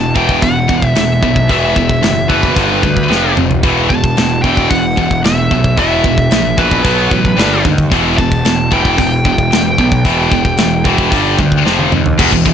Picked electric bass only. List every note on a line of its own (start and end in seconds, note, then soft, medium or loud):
0.00 0.13 E1 medium
0.16 0.41 E1 medium
0.43 0.68 E1 medium
0.69 0.94 E1 medium
0.96 1.21 E1 medium
1.22 1.48 B1 medium
1.50 1.99 E1 medium
2.03 2.53 F#1 medium
2.56 2.81 G1 loud
2.83 3.08 D2 medium
3.11 3.35 F1 medium
3.37 3.62 F1 medium
3.63 4.13 E1 medium
4.18 4.42 E1 medium
4.43 4.69 E1 medium
4.71 4.96 E1 medium
4.98 5.22 E1 medium
5.24 5.49 E1 medium
5.51 5.76 B1 medium
5.77 6.27 E1 medium
6.32 6.81 A#1 medium
6.84 7.09 B1 medium
7.11 7.36 A1 medium
7.39 7.63 G1 medium
7.65 7.90 D#2 medium
7.91 8.41 E1 loud
8.46 8.70 E1 medium
8.72 8.97 E1 medium
8.98 9.23 E1 medium
9.25 9.50 E1 medium
9.53 9.77 E1 medium
9.78 10.03 B1 medium
10.05 10.55 E1 medium
10.59 11.09 E1 medium
11.12 11.37 G1 loud
11.39 11.64 D2 medium
11.65 11.90 F1 medium
11.93 12.18 D#2 medium
12.19 12.32 E1 loud
12.33 12.45 E1 medium
12.46 12.54 E1 medium